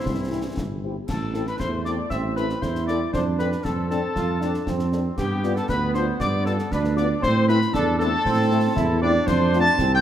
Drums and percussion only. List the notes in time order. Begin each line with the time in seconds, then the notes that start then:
0.06 concert bass drum, snare
0.57 concert bass drum, snare
1.09 concert bass drum, snare, crash
1.34 snare
1.47 snare
1.60 concert bass drum, snare
1.85 snare
2.10 concert bass drum, snare
2.37 snare
2.49 snare
2.62 concert bass drum, snare
2.75 snare
2.88 snare
3.14 concert bass drum, snare
3.39 snare
3.52 snare
3.65 concert bass drum, snare
3.91 snare
4.16 concert bass drum, snare
4.41 snare
4.54 snare
4.67 concert bass drum, snare
4.79 snare
4.92 snare
5.18 concert bass drum, snare, crash
5.43 snare
5.56 snare
5.69 concert bass drum, snare
5.94 snare
6.20 concert bass drum, snare
6.46 snare
6.59 snare
6.72 concert bass drum, snare
6.84 snare
6.97 snare
7.23 concert bass drum, snare
7.48 snare
7.62 snare
7.74 concert bass drum, snare
8.00 snare
8.26 concert bass drum, snare
8.77 concert bass drum, snare
9.28 concert bass drum, snare, crash
9.53 snare
9.66 snare
9.79 concert bass drum, snare